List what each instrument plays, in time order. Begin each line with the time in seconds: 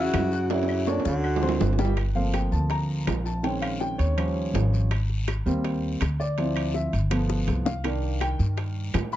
Already playing: upright bass E2, baritone saxophone C#3, grand piano E4 E5 E6, alto saxophone F#4
0.13 upright bass F#2, high bongo, low bongo, high timbale, low timbale, short guiro, claves
0.32 grand piano F#4 F#5 F#6, high bongo, short guiro
0.50 baritone saxophone C#3, grand piano F#3 F#4 F#5, alto saxophone E4, high bongo, high timbale, long guiro
0.63 high timbale
0.69 claves
0.87 baritone saxophone A#2, grand piano C#4 C#5 C#6, alto saxophone D4, high bongo, high timbale, short guiro
1.00 high timbale
1.05 upright bass D2, baritone saxophone D3, alto saxophone F#4, high bongo, short guiro
1.23 grand piano F#4 F#5 F#6, long guiro, claves
1.36 low timbale
1.42 grand piano C4 C5 C6, low bongo
1.49 low timbale
1.61 upright bass G1, low bongo, low timbale, short guiro
1.73 low timbale
1.78 grand piano G3 G4 G5, low bongo, short guiro
1.85 low timbale
1.97 high bongo, high timbale, long guiro, claves
2.15 grand piano F3 A3 A#3 C4 F5, high bongo
2.34 grand piano G5, high bongo, high timbale, short guiro, claves
2.52 upright bass D2, grand piano A5, high bongo, short guiro
2.70 grand piano A#5, high bongo, high timbale, long guiro
3.07 upright bass A#1, high bongo, low bongo, high timbale, low timbale, short guiro, claves
3.25 grand piano A5, high bongo, short guiro
3.43 grand piano D#3 G#3 C4 C#4 G5, high bongo, high timbale, long guiro
3.62 grand piano F5, high timbale, claves
3.80 grand piano G5, high bongo, short guiro
3.98 upright bass D#2, grand piano C#5, high bongo, high timbale, short guiro
4.17 grand piano F3 G3 C#4 C5, high bongo, high timbale, long guiro, claves
4.36 high bongo
4.54 upright bass G#1, high bongo, low bongo, high timbale, low timbale, short guiro
4.73 high bongo, short guiro
4.91 high bongo, high timbale, long guiro, claves
5.09 high bongo
5.28 high bongo, high timbale, short guiro, claves
5.46 upright bass D#2, grand piano G3 A#3 C4, high bongo, short guiro
5.64 high bongo, high timbale, long guiro
6.01 upright bass D2, high bongo, low bongo, high timbale, short guiro, claves
6.20 grand piano D5, high bongo, short guiro
6.38 grand piano F3 C4 E4, high bongo, high timbale, long guiro
6.56 high timbale, claves
6.74 grand piano E5, high bongo, short guiro
6.93 upright bass G1, high bongo, high timbale, short guiro
7.10 grand piano F3 A3 B3, high bongo, high timbale, long guiro, claves
7.29 high bongo
7.48 upright bass C2, low bongo, high timbale, short guiro
7.65 grand piano F5, low bongo, short guiro
7.84 grand piano D#3 D4 A#4, high bongo, high timbale, long guiro, claves
8.02 high bongo
8.21 grand piano G5, high bongo, high timbale, short guiro, claves
8.39 upright bass G2, high bongo, short guiro
8.57 high bongo, high timbale, long guiro
8.94 upright bass A2, high bongo, low bongo, high timbale, low timbale, short guiro, claves
9.12 grand piano B5, high bongo, short guiro